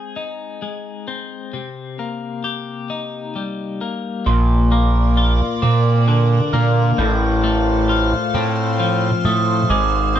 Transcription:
0.00 0.61 G#3 soft
0.00 1.07 C4 soft
0.00 1.53 G#4 soft
0.16 1.53 D#4 soft
0.62 1.53 G#3 soft
1.08 1.99 C4 soft
1.53 3.81 C3 soft
1.99 3.80 A#3 soft
2.44 4.26 G4 soft
2.90 4.26 D#4 soft
3.36 4.26 G3 soft
3.81 4.26 A#3 soft
4.26 5.41 A#1 loud
4.26 6.53 A#2 medium
4.26 6.95 A#4 medium
4.26 6.95 D5 medium
4.26 9.66 F5 medium
4.26 6.96 C6 medium
4.26 4.72 C6 medium
4.71 6.52 A#3 medium
4.71 5.61 D6 medium
5.17 6.98 F4 medium
5.62 6.39 A#2 medium
5.62 8.34 C4 medium
5.62 6.53 D6 medium
6.08 6.98 D3 medium
6.53 6.92 A#2 loud
6.53 6.99 A#3 medium
6.53 6.98 F6 medium
6.98 8.13 A1 loud
6.98 9.25 A2 medium
6.98 9.67 A4 medium
6.98 10.20 C5 medium
6.98 10.20 C6 medium
6.98 7.89 G6 medium
7.44 9.24 A3 medium
7.89 9.70 F4 medium
7.89 8.79 F6 medium
8.34 9.11 A2 loud
8.34 10.16 C4 medium
8.80 9.70 F3 medium
8.80 9.25 F6 medium
9.25 9.63 A2 loud
9.25 9.70 A3 medium
9.25 9.70 D#6 medium
9.69 10.20 G#1 loud
9.69 10.20 G#3 medium
9.69 10.20 G#4 medium
9.69 10.20 D#5 medium
9.69 10.15 D6 medium
10.16 10.20 C4 medium
10.16 10.20 D#6 medium

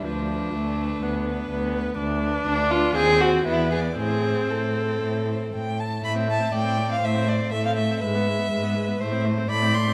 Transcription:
0.04 0.48 D2 soft
0.04 0.53 F3 soft
0.04 1.71 D4 medium
0.04 0.28 B4 soft
0.29 0.77 B4 soft
0.53 0.96 D2 medium
0.53 1.04 A3 medium
0.78 1.26 B4 soft
1.02 1.45 D2 medium
1.02 1.50 B3 soft
1.27 1.74 B4 soft
1.50 1.93 D2 medium
1.50 1.97 B3 medium
1.75 1.98 B4 soft
1.97 2.41 D2 medium
1.97 2.97 D4 medium
2.22 2.70 B4 medium
2.45 2.90 D2 medium
2.45 2.72 D4 medium
2.71 2.95 F4 medium
2.71 2.96 B4 medium
2.96 3.40 D#2 medium
2.96 3.45 C4 medium
2.96 3.22 G#4 medium
2.96 3.21 C5 soft
3.21 3.46 F#4 medium
3.21 3.46 C5 soft
3.45 3.92 E2 medium
3.45 3.97 B3 medium
3.45 3.71 E4 medium
3.45 3.73 D5 soft
3.71 3.79 G#4 medium
3.71 3.99 D5 soft
3.97 4.44 A2 soft
3.97 5.75 C4 medium
3.97 4.51 G#4 medium
3.97 4.25 C5 soft
4.27 4.76 C5 soft
4.49 4.95 A2 soft
4.49 5.78 A4 medium
4.78 5.27 C5 soft
5.01 5.47 A2 soft
5.28 5.53 C5 soft
5.54 5.99 A2 soft
5.54 5.81 G5 medium
5.80 6.04 A5 medium
6.02 6.48 A2 medium
6.02 6.17 A3 soft
6.02 6.53 E5 medium
6.02 6.12 B5 medium
6.16 6.29 C4 soft
6.28 6.41 A3 soft
6.28 6.54 A5 medium
6.40 6.51 C4 soft
6.52 6.97 A2 medium
6.52 6.66 A3 soft
6.52 7.00 D5 medium
6.52 6.91 G5 medium
6.65 6.79 C4 soft
6.77 6.90 A3 soft
6.88 7.01 C4 soft
6.88 7.06 F5 medium
7.00 7.47 A2 medium
7.00 7.16 A3 soft
7.00 7.53 C5 medium
7.05 7.30 E5 medium
7.15 7.28 C4 soft
7.27 7.41 A3 soft
7.27 7.51 D5 medium
7.40 7.52 C4 soft
7.51 7.97 A2 medium
7.51 7.67 A3 soft
7.51 8.01 A4 medium
7.51 7.65 E5 medium
7.65 7.80 C4 soft
7.65 7.75 F5 medium
7.76 7.92 A3 soft
7.76 7.99 E5 medium
7.91 8.03 C4 soft
8.00 8.46 G#2 medium
8.00 8.16 G#3 soft
8.00 8.49 B4 medium
8.00 9.22 E5 medium
8.15 8.29 B3 soft
8.27 8.40 G#3 soft
8.39 8.51 B3 soft
8.50 8.96 G#2 medium
8.50 8.65 G#3 soft
8.50 9.01 B4 medium
8.63 8.77 B3 soft
8.75 8.90 G#3 soft
8.88 9.00 B3 soft
9.00 9.45 A2 medium
9.00 9.14 A3 soft
9.00 9.50 C5 medium
9.12 9.26 C4 soft
9.25 9.39 A3 soft
9.38 9.50 C4 soft
9.48 9.94 A2 medium
9.48 9.64 A3 soft
9.48 9.94 D5 medium
9.48 9.76 B5 medium
9.62 9.77 C4 soft
9.74 9.89 A3 soft
9.74 9.94 C6 medium
9.87 9.94 C4 soft

